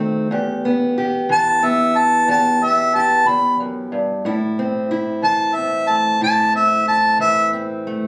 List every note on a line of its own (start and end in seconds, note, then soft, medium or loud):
0.00 0.27 D#3 medium
0.00 0.27 A3 medium
0.00 0.27 C4 medium
0.00 0.31 F#4 medium
0.31 2.27 E2 medium
0.31 0.97 G4 medium
0.65 1.61 B3 medium
0.98 2.28 G4 medium
1.29 4.79 E3 medium
1.29 1.67 A5 medium
1.62 2.61 B3 medium
1.62 1.99 E5 medium
1.98 2.28 A5 medium
2.28 3.27 E2 medium
2.28 2.94 G4 medium
2.28 2.66 A5 medium
2.63 4.26 B3 soft
2.63 2.97 E5 medium
2.96 4.22 G4 medium
2.96 3.30 A5 medium
3.28 3.60 E2 medium
3.28 3.59 B5 medium
3.60 3.92 F#2 medium
3.92 4.25 G2 medium
4.25 6.20 A2 medium
4.25 4.91 E4 medium
4.59 5.56 C4 medium
4.91 6.21 E4 medium
5.23 7.19 E3 medium
5.23 5.57 A5 medium
5.56 6.52 C4 medium
5.56 5.90 E5 medium
5.89 7.86 A3 medium
5.89 6.21 A5 medium
6.21 8.07 A2 medium
6.21 6.87 E4 medium
6.21 6.55 A5 medium
6.53 7.52 C4 medium
6.53 6.87 E5 medium
6.87 8.07 E4 medium
6.87 7.20 A5 medium
7.19 8.07 E3 medium
7.19 7.53 E5 medium
7.53 8.07 C4 medium
7.87 8.07 A3 medium